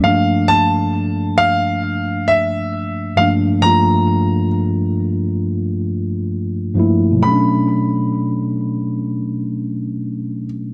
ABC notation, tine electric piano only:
X:1
M:4/4
L:1/8
Q:"Swing 16ths" 1/4=67
K:Glyd
V:1 name="Tine electric piano"
[G,,=F,A,_B,D]3 z4 [G,,F,A,B,D] | [G,,=F,A,_B,=F]3 z4 [G,,F,A,B,E] | [B,,F,A,CD]8 |]